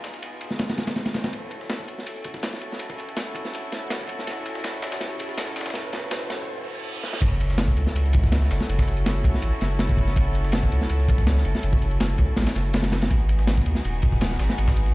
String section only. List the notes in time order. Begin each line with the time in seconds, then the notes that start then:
Already playing: B3 D#4 F4 G#4
1.33 C#4 E4 F#4 A4
7.22 C#4 E4 F#4 A4
13.11 B3 D#4 F#4 G#4